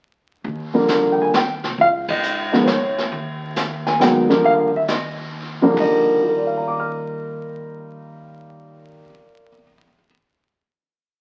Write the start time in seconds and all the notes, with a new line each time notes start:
0.44 D#2, brush sweep, kick
0.74 D3 F3 G3 A#3
0.88 snare, hi-hat pedal
1.12 G5
1.22 G#5
1.33 G5, snare, hi-hat pedal
1.63 C2, snare
1.78 C#2 F5, brush sweep, kick
2.08 D#5, kick, ride
2.23 hi-hat pedal
2.52 D#3 F3 G#3 B3 D#5, snare
2.64 C5 C#5, snare, hi-hat pedal
2.98 snare
3.12 D#2, brush sweep, kick
3.56 snare, hi-hat pedal
3.87 G#5, snare
4.00 D#3 F#3 G#3 B3 G5, snare, hi-hat pedal
4.29 E2 D3 F3 G3 A#3, snare
4.44 D#2 F5, brush sweep, kick
4.76 E5
4.88 D#5, snare, hi-hat pedal
5.62 D#2 D3 F3 G3 A#3
5.72 D#3
5.77 D#2 D#5, kick, open hi-hat
5.81 G3
6.22 F4
6.29 A#4
6.37 D5
6.47 F5
6.57 A#5
6.67 D6
6.80 F6